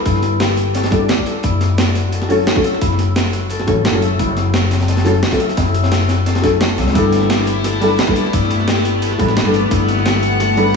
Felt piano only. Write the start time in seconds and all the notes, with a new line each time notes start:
0.91 G3 B3 D4 E4 A4
2.29 F#3 A3 C#4 E4 A4
2.55 F#3 A3 C#4 E4 A4
3.66 F#3 A3 C#4 E4 A4
3.93 F#3 A3 C#4 E4 A4
5.04 F#3 A3 C#4 E4 A4
5.31 F#3 A3 C#4 E4 A4
6.42 F#3 A3 C#4 E4 A4
6.93 G3 B3 D4
6.97 E4 A4
7.80 G3 B3 D4 E4 A4
8.06 G3 B3 D4 E4 A4
9.18 G3 B3 D4 E4 A4
9.44 G3 B3 D4 E4 A4
10.56 G3 B3 D4 E4 A4